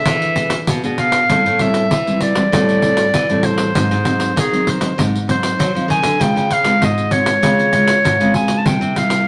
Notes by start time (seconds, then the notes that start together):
Already playing: B3 D4 G#4 E5
0.05 E3, pandeiro
0.22 pandeiro
0.36 B3 D4 G#4, pandeiro
0.50 pandeiro
0.67 B2, pandeiro
0.83 B2 B3 D4 G#4, pandeiro
0.98 F5, pandeiro
1.12 pandeiro
1.28 A2 G3 C4 E4, pandeiro
1.46 A2, pandeiro
1.59 G3 C4 E4 E5, pandeiro
1.74 pandeiro
1.91 E3, pandeiro
2.06 G3 C4 E4, pandeiro
2.21 D5, pandeiro
2.35 G3 C4 E4, pandeiro
2.52 A2 G3 C4 E4, pandeiro
2.69 pandeiro
2.81 G3 C4 E4, pandeiro
2.97 pandeiro
3.14 E3, pandeiro
3.28 A2 G3 C4 E4, pandeiro
3.43 C5, pandeiro
3.58 pandeiro
3.75 G#2 F#3 C4 D#4, pandeiro
3.91 G#2, pandeiro
4.04 F#3 C4 D#4, pandeiro
4.20 pandeiro
4.35 D#3 G#4, pandeiro
4.52 F#3 C4 D#4, pandeiro
4.67 C5, pandeiro
4.80 F#3 C4 D#4, pandeiro
4.97 G#2 F#3 C4 D#4, pandeiro
5.16 pandeiro
5.27 F#3 C4 D#4 C5, pandeiro
5.43 pandeiro
5.58 D#3 F#3, pandeiro
5.75 F3 F#3 C4 D#4, pandeiro
5.88 D#3 G#5, pandeiro
6.02 D3, pandeiro
6.19 C#3 G#3 C4 F4 G5, pandeiro
6.36 C#3, pandeiro
6.50 F5, pandeiro
6.63 G#3 C4 F4, pandeiro
6.81 G#2 D#5, pandeiro
6.98 pandeiro
7.11 G#3 C4 F4 C#5, pandeiro
7.26 pandeiro
7.42 C#3 G#3 C4 F4, pandeiro
7.59 pandeiro
7.72 G#3 F4, pandeiro
7.88 pandeiro
8.04 G#2, pandeiro
8.20 C#3 G#3 C4 F4, pandeiro
8.34 G#5, pandeiro
8.48 pandeiro
8.58 A5
8.66 C3 G3 A#3 E4 G5, pandeiro
8.81 C3, pandeiro
8.95 G3 A#3 E4 F5, pandeiro
9.10 pandeiro